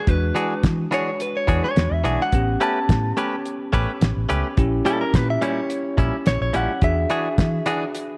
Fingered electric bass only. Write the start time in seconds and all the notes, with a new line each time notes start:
0.08 E2
0.64 E3
1.49 E2
1.77 E2
1.91 E2
2.05 B1
2.32 A1
2.89 A2
3.73 A1
4.01 A1
4.17 A1
4.30 C#2
4.58 A#1
5.14 A#2
5.98 A#1
6.27 A#1
6.41 A#1
6.54 A#1
6.82 E2
7.38 E3